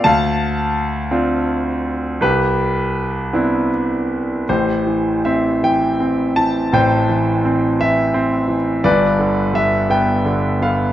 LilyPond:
<<
  \new Staff \with { instrumentName = "Grand piano" } { \time 6/8 \key d \dorian \tempo 4. = 55 << { a''2. | b'2 r4 | \key a \minor c''4 e''8 g''4 a''8 | g''4. e''4 r8 |
d''4 e''8 g''4 f''8 | } \\ { f''2. | g'2 r4 | g'4. r4. | c''4. r4. |
b'4. r4. | } >> }
  \new Staff \with { instrumentName = "Grand piano" } { \clef bass \time 6/8 \key d \dorian d,4. <c' d' f'>4. | c,4. <b c' d' e'>4. | \key a \minor <a,, a,>8 e8 c'8 e8 c'8 e8 | <a,, a,>8 e8 c'8 e8 c'8 e8 |
<g,, g,>8 d8 g8 b8 d8 b8 | }
>>